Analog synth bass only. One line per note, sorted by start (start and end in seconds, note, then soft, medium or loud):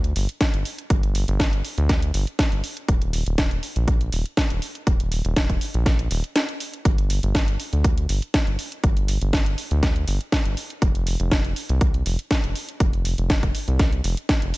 0.00 0.13 D2 loud
0.16 0.27 G1 medium
0.54 0.64 G1 loud
0.90 1.25 G1 loud
1.28 1.62 G1 loud
1.78 2.11 D2 loud
2.14 2.25 G1 medium
2.52 2.62 G1 loud
2.88 3.23 D#1 loud
3.26 3.60 D#1 loud
3.76 4.10 A#1 loud
4.12 4.24 D#1 medium
4.50 4.60 D#1 loud
4.87 5.21 D#1 loud
5.25 5.58 D#1 loud
5.74 6.08 A#1 loud
6.11 6.22 D#1 loud
6.85 7.20 G1 loud
7.23 7.57 G1 loud
7.73 8.06 D2 loud
8.09 8.20 G1 medium
8.47 8.57 G1 loud
8.84 9.18 G1 loud
9.21 9.55 G1 loud
9.71 10.05 D2 loud
10.08 10.19 G1 medium
10.45 10.55 G1 loud
10.82 11.17 F1 loud
11.20 11.53 F1 loud
11.69 12.03 C2 loud
12.06 12.17 F1 medium
12.44 12.54 F1 loud
12.80 13.15 F1 loud
13.18 13.52 F1 loud
13.68 14.01 C2 loud
14.04 14.15 F1 medium
14.42 14.52 F1 loud